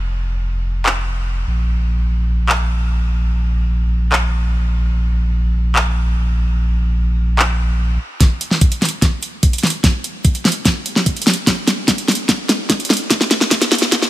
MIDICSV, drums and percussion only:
0, 0, Header, 1, 2, 480
1, 0, Start_track
1, 0, Tempo, 408163
1, 49, Time_signature, 4, 2, 24, 8
1, 16579, End_track
2, 0, Start_track
2, 0, Title_t, "Drums"
2, 1009, Note_on_c, 9, 39, 86
2, 1127, Note_off_c, 9, 39, 0
2, 2929, Note_on_c, 9, 39, 85
2, 3047, Note_off_c, 9, 39, 0
2, 4850, Note_on_c, 9, 39, 81
2, 4967, Note_off_c, 9, 39, 0
2, 6769, Note_on_c, 9, 39, 85
2, 6887, Note_off_c, 9, 39, 0
2, 8690, Note_on_c, 9, 39, 87
2, 8807, Note_off_c, 9, 39, 0
2, 9649, Note_on_c, 9, 36, 95
2, 9649, Note_on_c, 9, 38, 46
2, 9649, Note_on_c, 9, 42, 80
2, 9767, Note_off_c, 9, 36, 0
2, 9767, Note_off_c, 9, 38, 0
2, 9767, Note_off_c, 9, 42, 0
2, 9889, Note_on_c, 9, 42, 66
2, 10007, Note_off_c, 9, 42, 0
2, 10011, Note_on_c, 9, 38, 42
2, 10129, Note_off_c, 9, 38, 0
2, 10129, Note_on_c, 9, 36, 97
2, 10130, Note_on_c, 9, 42, 80
2, 10247, Note_off_c, 9, 36, 0
2, 10247, Note_off_c, 9, 42, 0
2, 10251, Note_on_c, 9, 42, 60
2, 10369, Note_off_c, 9, 42, 0
2, 10370, Note_on_c, 9, 38, 49
2, 10370, Note_on_c, 9, 42, 49
2, 10410, Note_off_c, 9, 42, 0
2, 10410, Note_on_c, 9, 42, 62
2, 10450, Note_off_c, 9, 42, 0
2, 10450, Note_on_c, 9, 42, 79
2, 10488, Note_off_c, 9, 38, 0
2, 10567, Note_off_c, 9, 42, 0
2, 10609, Note_on_c, 9, 36, 93
2, 10610, Note_on_c, 9, 38, 51
2, 10610, Note_on_c, 9, 42, 78
2, 10726, Note_off_c, 9, 36, 0
2, 10727, Note_off_c, 9, 38, 0
2, 10727, Note_off_c, 9, 42, 0
2, 10849, Note_on_c, 9, 42, 66
2, 10966, Note_off_c, 9, 42, 0
2, 11089, Note_on_c, 9, 36, 89
2, 11089, Note_on_c, 9, 42, 80
2, 11206, Note_off_c, 9, 36, 0
2, 11207, Note_off_c, 9, 42, 0
2, 11211, Note_on_c, 9, 42, 52
2, 11270, Note_off_c, 9, 42, 0
2, 11270, Note_on_c, 9, 42, 66
2, 11329, Note_off_c, 9, 42, 0
2, 11329, Note_on_c, 9, 38, 55
2, 11329, Note_on_c, 9, 42, 49
2, 11369, Note_off_c, 9, 42, 0
2, 11369, Note_on_c, 9, 42, 65
2, 11409, Note_off_c, 9, 42, 0
2, 11409, Note_on_c, 9, 42, 78
2, 11447, Note_off_c, 9, 38, 0
2, 11527, Note_off_c, 9, 42, 0
2, 11569, Note_on_c, 9, 36, 95
2, 11569, Note_on_c, 9, 38, 58
2, 11569, Note_on_c, 9, 42, 77
2, 11686, Note_off_c, 9, 36, 0
2, 11687, Note_off_c, 9, 38, 0
2, 11687, Note_off_c, 9, 42, 0
2, 11809, Note_on_c, 9, 42, 64
2, 11927, Note_off_c, 9, 42, 0
2, 12048, Note_on_c, 9, 36, 100
2, 12050, Note_on_c, 9, 42, 80
2, 12166, Note_off_c, 9, 36, 0
2, 12167, Note_off_c, 9, 42, 0
2, 12171, Note_on_c, 9, 42, 60
2, 12288, Note_off_c, 9, 42, 0
2, 12289, Note_on_c, 9, 38, 64
2, 12289, Note_on_c, 9, 42, 47
2, 12330, Note_off_c, 9, 42, 0
2, 12330, Note_on_c, 9, 42, 61
2, 12370, Note_off_c, 9, 42, 0
2, 12370, Note_on_c, 9, 42, 80
2, 12407, Note_off_c, 9, 38, 0
2, 12487, Note_off_c, 9, 42, 0
2, 12529, Note_on_c, 9, 36, 95
2, 12529, Note_on_c, 9, 38, 63
2, 12529, Note_on_c, 9, 42, 74
2, 12646, Note_off_c, 9, 36, 0
2, 12647, Note_off_c, 9, 38, 0
2, 12647, Note_off_c, 9, 42, 0
2, 12769, Note_on_c, 9, 42, 65
2, 12887, Note_off_c, 9, 42, 0
2, 12891, Note_on_c, 9, 38, 55
2, 13008, Note_off_c, 9, 38, 0
2, 13008, Note_on_c, 9, 36, 89
2, 13009, Note_on_c, 9, 42, 75
2, 13126, Note_off_c, 9, 36, 0
2, 13127, Note_off_c, 9, 42, 0
2, 13131, Note_on_c, 9, 42, 50
2, 13190, Note_off_c, 9, 42, 0
2, 13190, Note_on_c, 9, 42, 64
2, 13250, Note_off_c, 9, 42, 0
2, 13250, Note_on_c, 9, 38, 70
2, 13250, Note_on_c, 9, 42, 49
2, 13290, Note_off_c, 9, 42, 0
2, 13290, Note_on_c, 9, 42, 61
2, 13329, Note_off_c, 9, 42, 0
2, 13329, Note_on_c, 9, 42, 79
2, 13367, Note_off_c, 9, 38, 0
2, 13447, Note_off_c, 9, 42, 0
2, 13489, Note_on_c, 9, 36, 98
2, 13490, Note_on_c, 9, 38, 73
2, 13490, Note_on_c, 9, 42, 75
2, 13606, Note_off_c, 9, 36, 0
2, 13607, Note_off_c, 9, 38, 0
2, 13607, Note_off_c, 9, 42, 0
2, 13729, Note_on_c, 9, 38, 74
2, 13729, Note_on_c, 9, 42, 61
2, 13847, Note_off_c, 9, 38, 0
2, 13847, Note_off_c, 9, 42, 0
2, 13969, Note_on_c, 9, 36, 96
2, 13969, Note_on_c, 9, 38, 77
2, 13969, Note_on_c, 9, 42, 76
2, 14086, Note_off_c, 9, 36, 0
2, 14087, Note_off_c, 9, 38, 0
2, 14087, Note_off_c, 9, 42, 0
2, 14091, Note_on_c, 9, 42, 58
2, 14209, Note_off_c, 9, 42, 0
2, 14209, Note_on_c, 9, 38, 79
2, 14209, Note_on_c, 9, 42, 49
2, 14250, Note_off_c, 9, 42, 0
2, 14250, Note_on_c, 9, 42, 61
2, 14290, Note_off_c, 9, 42, 0
2, 14290, Note_on_c, 9, 42, 77
2, 14327, Note_off_c, 9, 38, 0
2, 14408, Note_off_c, 9, 42, 0
2, 14449, Note_on_c, 9, 36, 99
2, 14450, Note_on_c, 9, 38, 82
2, 14450, Note_on_c, 9, 42, 76
2, 14567, Note_off_c, 9, 36, 0
2, 14568, Note_off_c, 9, 38, 0
2, 14568, Note_off_c, 9, 42, 0
2, 14690, Note_on_c, 9, 38, 85
2, 14690, Note_on_c, 9, 42, 63
2, 14807, Note_off_c, 9, 38, 0
2, 14807, Note_off_c, 9, 42, 0
2, 14930, Note_on_c, 9, 36, 96
2, 14930, Note_on_c, 9, 38, 86
2, 14930, Note_on_c, 9, 42, 74
2, 15047, Note_off_c, 9, 36, 0
2, 15048, Note_off_c, 9, 38, 0
2, 15048, Note_off_c, 9, 42, 0
2, 15052, Note_on_c, 9, 42, 50
2, 15111, Note_off_c, 9, 42, 0
2, 15111, Note_on_c, 9, 42, 66
2, 15171, Note_off_c, 9, 42, 0
2, 15171, Note_on_c, 9, 38, 88
2, 15171, Note_on_c, 9, 42, 48
2, 15211, Note_off_c, 9, 42, 0
2, 15211, Note_on_c, 9, 42, 61
2, 15250, Note_off_c, 9, 42, 0
2, 15250, Note_on_c, 9, 42, 78
2, 15288, Note_off_c, 9, 38, 0
2, 15368, Note_off_c, 9, 42, 0
2, 15410, Note_on_c, 9, 36, 98
2, 15411, Note_on_c, 9, 38, 92
2, 15411, Note_on_c, 9, 42, 77
2, 15528, Note_off_c, 9, 36, 0
2, 15528, Note_off_c, 9, 38, 0
2, 15528, Note_off_c, 9, 42, 0
2, 15531, Note_on_c, 9, 38, 83
2, 15649, Note_off_c, 9, 38, 0
2, 15650, Note_on_c, 9, 38, 95
2, 15650, Note_on_c, 9, 42, 61
2, 15767, Note_off_c, 9, 38, 0
2, 15767, Note_off_c, 9, 42, 0
2, 15771, Note_on_c, 9, 38, 83
2, 15889, Note_off_c, 9, 38, 0
2, 15890, Note_on_c, 9, 36, 102
2, 15890, Note_on_c, 9, 38, 98
2, 15890, Note_on_c, 9, 42, 78
2, 16007, Note_off_c, 9, 36, 0
2, 16007, Note_off_c, 9, 38, 0
2, 16007, Note_off_c, 9, 42, 0
2, 16011, Note_on_c, 9, 38, 89
2, 16011, Note_on_c, 9, 42, 58
2, 16129, Note_off_c, 9, 38, 0
2, 16129, Note_off_c, 9, 42, 0
2, 16130, Note_on_c, 9, 38, 99
2, 16130, Note_on_c, 9, 42, 47
2, 16171, Note_off_c, 9, 42, 0
2, 16171, Note_on_c, 9, 42, 60
2, 16210, Note_off_c, 9, 42, 0
2, 16210, Note_on_c, 9, 42, 75
2, 16248, Note_off_c, 9, 38, 0
2, 16252, Note_on_c, 9, 38, 90
2, 16328, Note_off_c, 9, 42, 0
2, 16369, Note_off_c, 9, 38, 0
2, 16370, Note_on_c, 9, 36, 103
2, 16371, Note_on_c, 9, 38, 102
2, 16371, Note_on_c, 9, 42, 73
2, 16488, Note_off_c, 9, 36, 0
2, 16488, Note_off_c, 9, 38, 0
2, 16488, Note_off_c, 9, 42, 0
2, 16492, Note_on_c, 9, 38, 89
2, 16579, Note_off_c, 9, 38, 0
2, 16579, End_track
0, 0, End_of_file